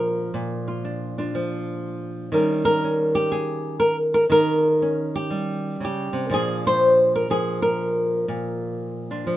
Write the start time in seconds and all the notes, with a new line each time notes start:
Already playing: A#2 F3 D4 A#4
0.34 A#2
0.68 F4
0.85 D4
1.18 D4 F4
1.35 F3
2.32 D#3 G3 C#4 A#4
2.65 A#4
2.84 C#4
3.15 G4
3.32 G#4
3.80 A#4
4.14 A#4
4.30 D#3 A#4
4.82 C#4
5.16 G4
5.31 G3
5.80 C#3
5.85 G4
6.13 C3
6.30 A#2 F3 D4 F4
6.34 G#4
6.67 C5
7.16 A#4
7.30 F3 G#4
7.62 A#4
8.28 A#2
9.11 D4 F4
9.27 F3